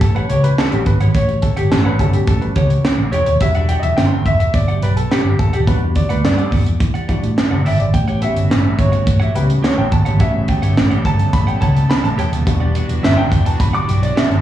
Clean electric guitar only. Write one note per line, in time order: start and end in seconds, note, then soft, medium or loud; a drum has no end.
0.02 muted clean electric guitar stroke soft
0.16 0.29 G4 medium
0.16 0.30 C#5 medium
0.16 0.32 F#5 medium
0.30 0.45 G4 medium
0.30 0.45 C#5 medium
0.30 0.44 G5 medium
0.44 muted clean electric guitar stroke medium
0.58 0.78 G4 medium
0.58 0.73 C#5 medium
0.58 0.72 F#5 medium
0.73 muted clean electric guitar stroke medium
0.87 muted clean electric guitar stroke soft
1.01 1.14 G4 medium
1.01 1.14 C#5 medium
1.01 1.15 F#5 medium
1.15 1.35 G4 medium
1.15 1.29 C#5 medium
1.15 1.28 F#5 medium
1.29 muted clean electric guitar stroke soft
1.43 muted clean electric guitar stroke soft
1.57 1.70 G4 medium
1.57 1.70 C#5 medium
1.57 1.71 F#5 medium
1.85 1.98 G4 medium
1.85 1.99 C#5 medium
1.85 2.00 F#5 medium
1.99 2.15 G4 medium
1.99 2.14 C#5 medium
1.99 2.12 F#5 medium
2.14 muted clean electric guitar stroke soft
2.42 muted clean electric guitar stroke medium
2.56 2.76 G4 medium
2.56 2.70 C#5 loud
2.56 2.69 F#5 medium
2.70 muted clean electric guitar stroke soft
2.84 muted clean electric guitar stroke soft
2.99 muted clean electric guitar stroke medium
3.12 3.32 G4 medium
3.12 3.27 C#5 medium
3.12 3.26 G5 medium
3.27 muted clean electric guitar stroke soft
3.41 muted clean electric guitar stroke soft
3.55 3.68 G4 medium
3.55 3.69 D5 medium
3.55 3.70 F#5 medium
3.69 3.85 G4 medium
3.69 3.84 D5 medium
3.69 3.83 F#5 medium
3.84 muted clean electric guitar stroke soft
3.98 muted clean electric guitar stroke soft
4.12 muted clean electric guitar stroke soft
4.40 muted clean electric guitar stroke medium
4.54 muted clean electric guitar stroke soft
4.68 4.81 G4 medium
4.68 4.82 D5 medium
4.68 4.84 F#5 medium
4.82 4.98 G4 medium
4.82 4.97 D5 medium
4.82 4.96 G5 medium
4.97 muted clean electric guitar stroke soft
5.11 5.31 G4 medium
5.11 5.25 D5 medium
5.11 5.24 F#5 medium
5.25 muted clean electric guitar stroke medium
5.39 muted clean electric guitar stroke soft
5.53 5.66 G4 medium
5.53 5.67 D5 medium
5.53 5.68 F#5 medium
5.67 5.87 G4 medium
5.67 5.82 D5 medium
5.67 5.80 F#5 medium
5.82 muted clean electric guitar stroke soft
5.96 muted clean electric guitar stroke soft
6.09 6.22 G4 medium
6.09 6.23 D5 medium
6.09 6.24 F#5 medium
6.24 muted clean electric guitar stroke soft
6.38 6.51 G4 medium
6.38 6.52 D5 medium
6.38 6.52 F#5 medium
6.52 6.68 G4 medium
6.52 6.67 D5 medium
6.52 6.65 F#5 medium
6.67 muted clean electric guitar stroke soft
6.80 muted clean electric guitar stroke soft
6.94 7.07 G4 soft
6.94 7.08 D5 medium
6.94 7.09 F#5 medium
7.08 7.28 G4 medium
7.08 7.23 D5 medium
7.08 7.21 F#5 loud
7.23 muted clean electric guitar stroke soft
7.37 muted clean electric guitar stroke soft
7.51 7.64 G4 medium
7.51 7.65 D5 medium
7.51 7.67 F#5 medium
7.65 7.85 G4 medium
7.65 7.79 D5 medium
7.65 7.79 G5 medium
7.79 muted clean electric guitar stroke medium
7.94 muted clean electric guitar stroke soft
8.08 8.21 G4 medium
8.08 8.22 C#5 medium
8.08 8.22 F#5 medium
8.22 8.38 G4 medium
8.22 8.36 C#5 medium
8.22 8.35 F#5 medium
8.36 muted clean electric guitar stroke soft
8.50 muted clean electric guitar stroke soft
8.64 muted clean electric guitar stroke soft
8.92 muted clean electric guitar stroke medium
9.06 muted clean electric guitar stroke soft
9.20 9.33 G4 medium
9.20 9.33 C#5 medium
9.20 9.35 F#5 medium
9.34 9.50 G4 medium
9.34 9.48 C#5 medium
9.34 9.48 G5 medium
9.48 muted clean electric guitar stroke soft
9.63 9.83 G4 medium
9.63 9.77 C#5 medium
9.63 9.76 F#5 medium
9.77 muted clean electric guitar stroke soft
9.91 muted clean electric guitar stroke soft
10.05 10.18 G4 medium
10.05 10.19 C#5 medium
10.05 10.20 F#5 medium
10.19 10.40 G4 medium
10.19 10.34 C#5 loud
10.19 10.33 F#5 loud
10.34 muted clean electric guitar stroke medium
10.48 muted clean electric guitar stroke soft
10.62 10.75 G4 medium
10.62 10.76 C#5 soft
10.62 10.76 F#5 medium
10.76 muted clean electric guitar stroke soft
10.91 11.03 G4 medium
10.91 11.04 C#5 medium
10.91 11.05 F#5 medium
11.04 11.20 G4 medium
11.04 11.19 C#5 medium
11.04 11.17 F#5 medium
11.19 muted clean electric guitar stroke soft
11.33 muted clean electric guitar stroke soft
11.47 11.60 G4 soft
11.47 11.61 C#5 medium
11.47 11.62 F#5 medium
11.61 11.81 G4 medium
11.61 11.76 C#5 medium
11.61 11.74 F#5 loud
11.75 muted clean electric guitar stroke medium
11.90 muted clean electric guitar stroke soft
12.04 muted clean electric guitar stroke medium
12.18 12.38 G4 medium
12.18 12.32 C#5 loud
12.18 12.32 G5 loud
12.32 muted clean electric guitar stroke soft
12.47 muted clean electric guitar stroke soft
12.60 12.74 G4 medium
12.60 12.74 D5 medium
12.60 12.75 F#5 medium
12.75 12.91 G4 medium
12.75 12.89 D5 medium
12.75 12.88 F#5 medium
12.89 muted clean electric guitar stroke soft
13.03 muted clean electric guitar stroke soft
13.17 muted clean electric guitar stroke medium
13.45 muted clean electric guitar stroke soft
13.60 muted clean electric guitar stroke soft
13.73 13.86 G4 medium
13.73 13.88 D5 medium
13.73 13.89 F#5 medium
13.87 14.03 G4 medium
13.87 14.02 D5 medium
13.87 14.02 G5 medium
14.02 muted clean electric guitar stroke medium
14.16 14.36 G4 medium
14.16 14.31 D5 medium
14.16 14.29 F#5 medium
14.31 muted clean electric guitar stroke medium